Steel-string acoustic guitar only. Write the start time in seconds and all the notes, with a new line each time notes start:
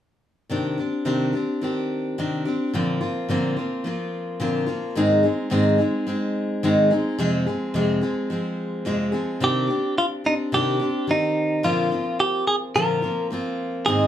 0.50 C3 D#3 C4 D4 G4
0.78 C4 D4 G4
1.05 C3 D#3 C4 D4 G4
1.33 C4 D4 G4
1.61 D#3 C4 D4 G4
2.18 C3 D#3 C4 D4 G4
2.45 C4 D4 G4
2.73 A#2 D3 F3 A#3 C4 F4
3.01 F3 A#3 C4 F4
3.29 A#2 D3 F3 A#3 C4 F4
3.56 F3 A#3 C4 F4
3.84 F3 A#3 C4 F4
4.40 A#2 D3 F3 A#3 C4 F4
4.66 F3 A#3 C4 F4
4.95 G#2 D#3 G#3 C4 D#4 G#4
5.23 G#3 C4 D#4 G#4
5.50 G#2 D#3 G#3 C4 D#4 G#4
5.78 G#3 C4 D#4 G#4
6.07 G#3 C4 D#4 G#4
6.63 G#2 D#3 G#3 C4 D#4 G#4
6.91 G#3 C4 D#4 G#4
7.18 F2 C3 F3 G#3 C4 G#4
7.47 F3 G#3 C4 G#4
7.74 F2 C3 F3 G#3 C4 G#4
8.01 F3 G#3 C4 G#4
8.30 F3 G#3 C4 G#4
8.85 F2 C3 F3 G#3 C4 G#4
9.12 F3 G#3 C4 G#4
9.40 C3 D#3 C4 D4 G4
9.67 C4 D4 G4
10.24 C4 D4 G4
10.52 C3 D#3 C4 D4 G4
10.79 C4 D4 G4
11.07 D#3 C4 G4
11.63 A#2 D3 F3 A#3 C4 F4
11.91 F3 A#3 C4 F4
12.75 A#2 D3 F3 A#3 C4 F4
13.02 F3 A#3 C4 F4
13.30 F3 A#3 C4 F4
13.87 G#2 D#3 G#3 C4 D#4 G#4